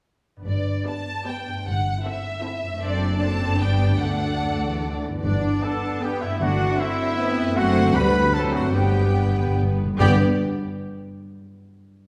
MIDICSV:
0, 0, Header, 1, 10, 480
1, 0, Start_track
1, 0, Key_signature, 1, "major"
1, 0, Tempo, 389610
1, 588, Time_signature, 3, 2, 24, 8
1, 4422, Tempo, 409556
1, 6822, Tempo, 387097
1, 10182, Tempo, 413508
1, 12102, Tempo, 399202
1, 14590, End_track
2, 0, Start_track
2, 0, Title_t, "Violin section"
2, 0, Program_c, 0, 48
2, 1064, Note_on_c, 0, 74, 34
2, 1065, Note_on_c, 0, 71, 32
2, 1434, Note_off_c, 0, 71, 0
2, 1434, Note_off_c, 0, 74, 0
2, 1559, Note_on_c, 0, 74, 35
2, 1569, Note_on_c, 0, 71, 33
2, 1923, Note_off_c, 0, 74, 0
2, 1928, Note_off_c, 0, 71, 0
2, 2524, Note_on_c, 0, 69, 38
2, 2533, Note_on_c, 0, 72, 37
2, 2875, Note_off_c, 0, 69, 0
2, 2879, Note_off_c, 0, 72, 0
2, 3002, Note_on_c, 0, 69, 41
2, 3005, Note_on_c, 0, 72, 41
2, 3351, Note_off_c, 0, 69, 0
2, 3353, Note_off_c, 0, 72, 0
2, 3464, Note_on_c, 0, 69, 44
2, 3466, Note_on_c, 0, 74, 44
2, 3901, Note_off_c, 0, 69, 0
2, 3902, Note_off_c, 0, 74, 0
2, 3923, Note_on_c, 0, 69, 39
2, 3936, Note_on_c, 0, 74, 39
2, 4401, Note_off_c, 0, 74, 0
2, 4406, Note_off_c, 0, 69, 0
2, 4413, Note_on_c, 0, 67, 38
2, 4416, Note_on_c, 0, 74, 36
2, 4888, Note_off_c, 0, 74, 0
2, 4896, Note_off_c, 0, 67, 0
2, 4902, Note_on_c, 0, 69, 39
2, 4911, Note_on_c, 0, 74, 38
2, 6094, Note_off_c, 0, 74, 0
2, 6113, Note_off_c, 0, 69, 0
2, 6342, Note_on_c, 0, 74, 48
2, 6783, Note_off_c, 0, 74, 0
2, 6815, Note_on_c, 0, 81, 53
2, 7297, Note_on_c, 0, 79, 46
2, 7304, Note_off_c, 0, 81, 0
2, 7543, Note_off_c, 0, 79, 0
2, 7546, Note_on_c, 0, 76, 51
2, 7786, Note_off_c, 0, 76, 0
2, 7788, Note_on_c, 0, 78, 59
2, 8254, Note_off_c, 0, 78, 0
2, 8254, Note_on_c, 0, 76, 68
2, 9213, Note_off_c, 0, 76, 0
2, 9233, Note_on_c, 0, 78, 73
2, 9689, Note_on_c, 0, 83, 72
2, 9697, Note_off_c, 0, 78, 0
2, 10176, Note_off_c, 0, 83, 0
2, 10186, Note_on_c, 0, 81, 60
2, 10278, Note_off_c, 0, 81, 0
2, 10424, Note_on_c, 0, 78, 50
2, 10647, Note_on_c, 0, 79, 55
2, 10650, Note_off_c, 0, 78, 0
2, 11595, Note_off_c, 0, 79, 0
2, 12102, Note_on_c, 0, 79, 64
2, 12372, Note_off_c, 0, 79, 0
2, 14590, End_track
3, 0, Start_track
3, 0, Title_t, "Violin section"
3, 0, Program_c, 1, 48
3, 583, Note_on_c, 1, 74, 44
3, 1039, Note_off_c, 1, 74, 0
3, 1084, Note_on_c, 1, 81, 53
3, 1559, Note_off_c, 1, 81, 0
3, 1560, Note_on_c, 1, 79, 42
3, 2047, Note_off_c, 1, 79, 0
3, 2059, Note_on_c, 1, 78, 52
3, 2518, Note_off_c, 1, 78, 0
3, 2526, Note_on_c, 1, 76, 53
3, 3451, Note_off_c, 1, 76, 0
3, 3475, Note_on_c, 1, 74, 59
3, 3927, Note_on_c, 1, 81, 62
3, 3940, Note_off_c, 1, 74, 0
3, 4417, Note_off_c, 1, 81, 0
3, 4433, Note_on_c, 1, 79, 54
3, 4896, Note_on_c, 1, 78, 54
3, 4906, Note_off_c, 1, 79, 0
3, 5867, Note_off_c, 1, 78, 0
3, 6808, Note_on_c, 1, 71, 43
3, 7176, Note_off_c, 1, 71, 0
3, 7300, Note_on_c, 1, 71, 47
3, 7661, Note_off_c, 1, 71, 0
3, 8246, Note_on_c, 1, 72, 53
3, 8608, Note_off_c, 1, 72, 0
3, 8741, Note_on_c, 1, 72, 59
3, 9096, Note_off_c, 1, 72, 0
3, 9220, Note_on_c, 1, 72, 61
3, 9666, Note_off_c, 1, 72, 0
3, 9689, Note_on_c, 1, 71, 55
3, 10176, Note_off_c, 1, 71, 0
3, 10178, Note_on_c, 1, 72, 49
3, 10648, Note_off_c, 1, 72, 0
3, 10649, Note_on_c, 1, 71, 45
3, 11859, Note_off_c, 1, 71, 0
3, 12103, Note_on_c, 1, 74, 61
3, 12373, Note_off_c, 1, 74, 0
3, 14590, End_track
4, 0, Start_track
4, 0, Title_t, "Trumpet section"
4, 0, Program_c, 2, 61
4, 6353, Note_on_c, 2, 62, 65
4, 6789, Note_off_c, 2, 62, 0
4, 6815, Note_on_c, 2, 69, 67
4, 7301, Note_on_c, 2, 67, 58
4, 7304, Note_off_c, 2, 69, 0
4, 7538, Note_on_c, 2, 64, 62
4, 7545, Note_off_c, 2, 67, 0
4, 7775, Note_on_c, 2, 66, 76
4, 7782, Note_off_c, 2, 64, 0
4, 8248, Note_off_c, 2, 66, 0
4, 8250, Note_on_c, 2, 64, 80
4, 9211, Note_off_c, 2, 64, 0
4, 9215, Note_on_c, 2, 66, 92
4, 9686, Note_on_c, 2, 71, 83
4, 9697, Note_off_c, 2, 66, 0
4, 10170, Note_on_c, 2, 69, 79
4, 10175, Note_off_c, 2, 71, 0
4, 10391, Note_on_c, 2, 66, 68
4, 10407, Note_off_c, 2, 69, 0
4, 10633, Note_on_c, 2, 67, 62
4, 10639, Note_off_c, 2, 66, 0
4, 11608, Note_off_c, 2, 67, 0
4, 12089, Note_on_c, 2, 67, 80
4, 12296, Note_off_c, 2, 67, 0
4, 14590, End_track
5, 0, Start_track
5, 0, Title_t, "Viola section"
5, 0, Program_c, 3, 48
5, 1068, Note_on_c, 3, 67, 32
5, 1069, Note_on_c, 3, 59, 35
5, 1436, Note_off_c, 3, 59, 0
5, 1436, Note_off_c, 3, 67, 0
5, 1552, Note_on_c, 3, 67, 35
5, 1558, Note_on_c, 3, 59, 34
5, 1919, Note_off_c, 3, 67, 0
5, 1922, Note_off_c, 3, 59, 0
5, 2521, Note_on_c, 3, 64, 38
5, 2523, Note_on_c, 3, 60, 39
5, 2873, Note_off_c, 3, 64, 0
5, 2875, Note_off_c, 3, 60, 0
5, 2985, Note_on_c, 3, 60, 41
5, 2989, Note_on_c, 3, 64, 42
5, 3342, Note_off_c, 3, 60, 0
5, 3344, Note_off_c, 3, 64, 0
5, 3470, Note_on_c, 3, 60, 43
5, 3474, Note_on_c, 3, 62, 45
5, 3905, Note_off_c, 3, 60, 0
5, 3907, Note_off_c, 3, 62, 0
5, 3935, Note_on_c, 3, 62, 42
5, 3936, Note_on_c, 3, 60, 39
5, 4411, Note_off_c, 3, 62, 0
5, 4412, Note_off_c, 3, 60, 0
5, 4423, Note_on_c, 3, 59, 39
5, 4425, Note_on_c, 3, 62, 37
5, 4889, Note_off_c, 3, 62, 0
5, 4901, Note_off_c, 3, 59, 0
5, 4903, Note_on_c, 3, 62, 37
5, 4910, Note_on_c, 3, 57, 38
5, 6089, Note_off_c, 3, 62, 0
5, 6117, Note_off_c, 3, 57, 0
5, 6820, Note_on_c, 3, 62, 50
5, 7272, Note_off_c, 3, 62, 0
5, 7298, Note_on_c, 3, 59, 52
5, 7783, Note_off_c, 3, 59, 0
5, 7794, Note_on_c, 3, 62, 65
5, 8258, Note_off_c, 3, 62, 0
5, 8264, Note_on_c, 3, 60, 55
5, 8724, Note_on_c, 3, 59, 62
5, 8739, Note_off_c, 3, 60, 0
5, 9197, Note_on_c, 3, 57, 69
5, 9200, Note_off_c, 3, 59, 0
5, 9678, Note_off_c, 3, 57, 0
5, 9696, Note_on_c, 3, 55, 56
5, 10170, Note_off_c, 3, 55, 0
5, 10171, Note_on_c, 3, 57, 52
5, 10635, Note_off_c, 3, 57, 0
5, 10655, Note_on_c, 3, 59, 51
5, 11838, Note_off_c, 3, 59, 0
5, 12086, Note_on_c, 3, 59, 63
5, 12088, Note_on_c, 3, 67, 66
5, 12363, Note_off_c, 3, 59, 0
5, 12365, Note_off_c, 3, 67, 0
5, 14590, End_track
6, 0, Start_track
6, 0, Title_t, "French horn section"
6, 0, Program_c, 4, 60
6, 6334, Note_on_c, 4, 59, 46
6, 6345, Note_on_c, 4, 62, 46
6, 7728, Note_off_c, 4, 59, 0
6, 7796, Note_on_c, 4, 57, 53
6, 8685, Note_off_c, 4, 62, 0
6, 8738, Note_on_c, 4, 60, 55
6, 9697, Note_on_c, 4, 55, 57
6, 9698, Note_off_c, 4, 60, 0
6, 9702, Note_off_c, 4, 57, 0
6, 9707, Note_on_c, 4, 59, 54
6, 10180, Note_off_c, 4, 55, 0
6, 10184, Note_on_c, 4, 54, 50
6, 10185, Note_off_c, 4, 59, 0
6, 10185, Note_on_c, 4, 60, 48
6, 10642, Note_on_c, 4, 59, 44
6, 10649, Note_on_c, 4, 55, 41
6, 10651, Note_off_c, 4, 54, 0
6, 10651, Note_off_c, 4, 60, 0
6, 11832, Note_off_c, 4, 59, 0
6, 11835, Note_off_c, 4, 55, 0
6, 12085, Note_on_c, 4, 59, 62
6, 12086, Note_on_c, 4, 55, 62
6, 12293, Note_off_c, 4, 55, 0
6, 12293, Note_off_c, 4, 59, 0
6, 14590, End_track
7, 0, Start_track
7, 0, Title_t, "Harp"
7, 0, Program_c, 5, 46
7, 449, Note_on_c, 5, 43, 28
7, 477, Note_on_c, 5, 59, 24
7, 505, Note_on_c, 5, 62, 24
7, 526, Note_on_c, 5, 71, 23
7, 1804, Note_off_c, 5, 43, 0
7, 1819, Note_on_c, 5, 43, 33
7, 1876, Note_on_c, 5, 57, 27
7, 1927, Note_on_c, 5, 60, 27
7, 1983, Note_on_c, 5, 72, 27
7, 2017, Note_off_c, 5, 62, 0
7, 2037, Note_off_c, 5, 71, 0
7, 2045, Note_off_c, 5, 59, 0
7, 3240, Note_on_c, 5, 42, 39
7, 3280, Note_off_c, 5, 57, 0
7, 3295, Note_on_c, 5, 57, 32
7, 3354, Note_on_c, 5, 62, 33
7, 3371, Note_off_c, 5, 43, 0
7, 3395, Note_off_c, 5, 72, 0
7, 3409, Note_on_c, 5, 72, 31
7, 4194, Note_on_c, 5, 43, 37
7, 4252, Note_on_c, 5, 55, 31
7, 4293, Note_off_c, 5, 62, 0
7, 4308, Note_on_c, 5, 62, 31
7, 4328, Note_off_c, 5, 42, 0
7, 4355, Note_off_c, 5, 57, 0
7, 4364, Note_on_c, 5, 71, 33
7, 4380, Note_off_c, 5, 60, 0
7, 4412, Note_off_c, 5, 72, 0
7, 4688, Note_on_c, 5, 50, 35
7, 4738, Note_on_c, 5, 57, 28
7, 4781, Note_off_c, 5, 62, 0
7, 4796, Note_on_c, 5, 62, 28
7, 4812, Note_off_c, 5, 43, 0
7, 4839, Note_off_c, 5, 55, 0
7, 4848, Note_on_c, 5, 69, 27
7, 4892, Note_off_c, 5, 71, 0
7, 6141, Note_on_c, 5, 43, 39
7, 6193, Note_on_c, 5, 59, 34
7, 6232, Note_off_c, 5, 62, 0
7, 6246, Note_on_c, 5, 62, 33
7, 6266, Note_off_c, 5, 50, 0
7, 6291, Note_off_c, 5, 57, 0
7, 6300, Note_on_c, 5, 67, 32
7, 6346, Note_off_c, 5, 69, 0
7, 7535, Note_off_c, 5, 43, 0
7, 7550, Note_on_c, 5, 43, 46
7, 7605, Note_on_c, 5, 57, 40
7, 7663, Note_on_c, 5, 60, 38
7, 7717, Note_on_c, 5, 64, 42
7, 7722, Note_off_c, 5, 59, 0
7, 7750, Note_off_c, 5, 62, 0
7, 8984, Note_on_c, 5, 42, 57
7, 9024, Note_off_c, 5, 57, 0
7, 9039, Note_on_c, 5, 57, 46
7, 9082, Note_off_c, 5, 60, 0
7, 9097, Note_on_c, 5, 60, 44
7, 9118, Note_off_c, 5, 43, 0
7, 9150, Note_on_c, 5, 62, 49
7, 9201, Note_off_c, 5, 64, 0
7, 9209, Note_off_c, 5, 67, 0
7, 9464, Note_on_c, 5, 50, 55
7, 9522, Note_on_c, 5, 55, 44
7, 9575, Note_on_c, 5, 59, 44
7, 9601, Note_off_c, 5, 42, 0
7, 9618, Note_off_c, 5, 62, 0
7, 9629, Note_off_c, 5, 57, 0
7, 9633, Note_on_c, 5, 62, 42
7, 9658, Note_off_c, 5, 60, 0
7, 9941, Note_off_c, 5, 50, 0
7, 9956, Note_on_c, 5, 50, 48
7, 10007, Note_on_c, 5, 54, 39
7, 10067, Note_on_c, 5, 60, 39
7, 10112, Note_off_c, 5, 55, 0
7, 10122, Note_on_c, 5, 64, 41
7, 10139, Note_off_c, 5, 59, 0
7, 10429, Note_on_c, 5, 43, 43
7, 10483, Note_on_c, 5, 55, 33
7, 10533, Note_on_c, 5, 59, 35
7, 10563, Note_off_c, 5, 50, 0
7, 10573, Note_off_c, 5, 62, 0
7, 10587, Note_off_c, 5, 54, 0
7, 10587, Note_on_c, 5, 62, 34
7, 10615, Note_off_c, 5, 60, 0
7, 10640, Note_off_c, 5, 64, 0
7, 12010, Note_off_c, 5, 43, 0
7, 12036, Note_on_c, 5, 43, 57
7, 12058, Note_off_c, 5, 55, 0
7, 12062, Note_on_c, 5, 55, 56
7, 12078, Note_off_c, 5, 59, 0
7, 12079, Note_off_c, 5, 62, 0
7, 12092, Note_on_c, 5, 59, 54
7, 12121, Note_on_c, 5, 62, 54
7, 12147, Note_on_c, 5, 71, 57
7, 12365, Note_off_c, 5, 55, 0
7, 12366, Note_off_c, 5, 43, 0
7, 12366, Note_off_c, 5, 59, 0
7, 12366, Note_off_c, 5, 71, 0
7, 12367, Note_off_c, 5, 62, 0
7, 14590, End_track
8, 0, Start_track
8, 0, Title_t, "Timpani"
8, 0, Program_c, 6, 47
8, 6349, Note_on_c, 6, 43, 53
8, 7014, Note_off_c, 6, 43, 0
8, 10738, Note_on_c, 6, 43, 27
8, 10825, Note_off_c, 6, 43, 0
8, 10842, Note_on_c, 6, 43, 29
8, 10916, Note_off_c, 6, 43, 0
8, 10930, Note_on_c, 6, 43, 30
8, 11011, Note_off_c, 6, 43, 0
8, 11025, Note_on_c, 6, 43, 32
8, 11107, Note_off_c, 6, 43, 0
8, 11123, Note_on_c, 6, 43, 34
8, 11198, Note_off_c, 6, 43, 0
8, 11212, Note_on_c, 6, 43, 38
8, 11291, Note_off_c, 6, 43, 0
8, 11305, Note_on_c, 6, 43, 43
8, 11383, Note_off_c, 6, 43, 0
8, 11396, Note_on_c, 6, 43, 45
8, 11473, Note_off_c, 6, 43, 0
8, 11486, Note_on_c, 6, 43, 48
8, 11570, Note_off_c, 6, 43, 0
8, 11583, Note_on_c, 6, 43, 55
8, 11652, Note_off_c, 6, 43, 0
8, 11666, Note_on_c, 6, 43, 57
8, 11752, Note_off_c, 6, 43, 0
8, 11768, Note_on_c, 6, 43, 62
8, 11836, Note_off_c, 6, 43, 0
8, 11850, Note_on_c, 6, 43, 67
8, 11918, Note_off_c, 6, 43, 0
8, 11932, Note_on_c, 6, 43, 67
8, 12024, Note_off_c, 6, 43, 0
8, 12103, Note_on_c, 6, 43, 70
8, 12327, Note_off_c, 6, 43, 0
8, 14590, End_track
9, 0, Start_track
9, 0, Title_t, "Cello section"
9, 0, Program_c, 7, 48
9, 573, Note_on_c, 7, 43, 38
9, 965, Note_off_c, 7, 43, 0
9, 2046, Note_on_c, 7, 43, 41
9, 2422, Note_off_c, 7, 43, 0
9, 3459, Note_on_c, 7, 42, 43
9, 4368, Note_off_c, 7, 42, 0
9, 4406, Note_on_c, 7, 43, 45
9, 4892, Note_on_c, 7, 38, 35
9, 4893, Note_off_c, 7, 43, 0
9, 5324, Note_off_c, 7, 38, 0
9, 5378, Note_on_c, 7, 42, 37
9, 5472, Note_off_c, 7, 42, 0
9, 5625, Note_on_c, 7, 40, 36
9, 5863, Note_off_c, 7, 40, 0
9, 5873, Note_on_c, 7, 38, 41
9, 6114, Note_off_c, 7, 38, 0
9, 6118, Note_on_c, 7, 40, 36
9, 6356, Note_off_c, 7, 40, 0
9, 6360, Note_on_c, 7, 43, 49
9, 6728, Note_off_c, 7, 43, 0
9, 7774, Note_on_c, 7, 43, 57
9, 8157, Note_off_c, 7, 43, 0
9, 9215, Note_on_c, 7, 42, 60
9, 9664, Note_off_c, 7, 42, 0
9, 9682, Note_on_c, 7, 38, 59
9, 10641, Note_off_c, 7, 38, 0
9, 10641, Note_on_c, 7, 43, 43
9, 11831, Note_off_c, 7, 43, 0
9, 12096, Note_on_c, 7, 43, 63
9, 12368, Note_off_c, 7, 43, 0
9, 14590, End_track
10, 0, Start_track
10, 0, Title_t, "Double bass section"
10, 0, Program_c, 8, 48
10, 572, Note_on_c, 8, 31, 40
10, 965, Note_off_c, 8, 31, 0
10, 2050, Note_on_c, 8, 31, 44
10, 2424, Note_off_c, 8, 31, 0
10, 3471, Note_on_c, 8, 30, 43
10, 4374, Note_off_c, 8, 30, 0
10, 4414, Note_on_c, 8, 31, 42
10, 4897, Note_off_c, 8, 31, 0
10, 4900, Note_on_c, 8, 38, 38
10, 6088, Note_off_c, 8, 38, 0
10, 6341, Note_on_c, 8, 31, 53
10, 6719, Note_off_c, 8, 31, 0
10, 7785, Note_on_c, 8, 31, 67
10, 8163, Note_off_c, 8, 31, 0
10, 9212, Note_on_c, 8, 30, 59
10, 9662, Note_off_c, 8, 30, 0
10, 9703, Note_on_c, 8, 38, 55
10, 10647, Note_on_c, 8, 31, 50
10, 10651, Note_off_c, 8, 38, 0
10, 11834, Note_off_c, 8, 31, 0
10, 12103, Note_on_c, 8, 31, 67
10, 12372, Note_off_c, 8, 31, 0
10, 14590, End_track
0, 0, End_of_file